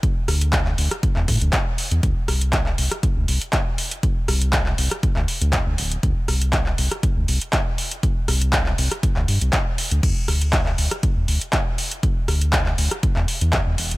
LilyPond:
<<
  \new Staff \with { instrumentName = "Analog synth bass" } { \clef bass \time 4/4 \key d \dorian \tempo 4 = 120 r8 d,4 d,16 r8 e,16 a,16 d,16 r8. e,16 | d,16 r16 c,4 c,16 r8 d,16 c,16 r4 r16 | r8 c,4 c,16 r8 d,16 r16 d,8 d,16 d,,8 | d,16 r16 c,4 c,16 r8 d,16 c,16 r4 r16 |
r8 c,4 c,16 r8 d,16 g,16 c,16 r8. d,16 | e,16 r16 d,4 d,16 r8 e,16 d,16 r4 r16 | r8 d,4 d,16 r8 e,16 r16 e,8 e,16 e,,8 | }
  \new DrumStaff \with { instrumentName = "Drums" } \drummode { \time 4/4 <hh bd>8 <hho ss>16 hh16 <hc hh bd>16 hc16 hho16 <hh ss>16 <hh bd>16 hc16 <hho bd>16 hh16 <hc hh bd>8 hho16 hh16 | <hh bd>8 <hho ss>16 hh16 <hc hh bd>16 hc16 hho16 <hh ss>16 <hh bd>8 hho16 hh16 <hc hh bd>8 hho16 hh16 | <hh bd>8 <hho ss>16 hh16 <hc hh bd>16 hc16 hho16 <hh ss>16 <hh bd>16 hc16 hho16 hh16 <hc hh bd>8 hho16 hh16 | <hh bd>8 <hho ss>16 hh16 <hc hh bd>16 hc16 hho16 <hh ss>16 <hh bd>8 hho16 hh16 <hc hh bd>8 hho16 hh16 |
<hh bd>8 <hho ss>16 hh16 <hc hh bd>16 hc16 hho16 <hh ss>16 <hh bd>16 hc16 hho16 hh16 <hc hh bd>8 hho16 hh16 | <cymc hh bd>8 <hho ss>16 hh16 <hc hh bd>16 hc16 hho16 <hh ss>16 <hh bd>8 hho16 hh16 <hc hh bd>8 hho16 hh16 | <hh bd>8 <hho ss>16 hh16 <hc hh bd>16 hc16 hho16 <hh ss>16 <hh bd>16 hc16 hho16 hh16 <hc hh bd>8 hho16 hh16 | }
>>